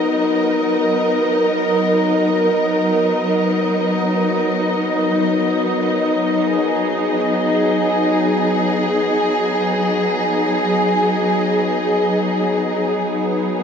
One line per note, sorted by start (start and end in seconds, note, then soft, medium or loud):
0.00 13.63 F#3 medium
0.00 12.87 B3 soft
0.00 13.63 D#4 medium
0.00 6.75 A#4 medium
0.00 12.86 D#5 medium
6.48 13.63 G#4 medium
13.03 13.63 B3 medium
13.56 13.63 A#4 medium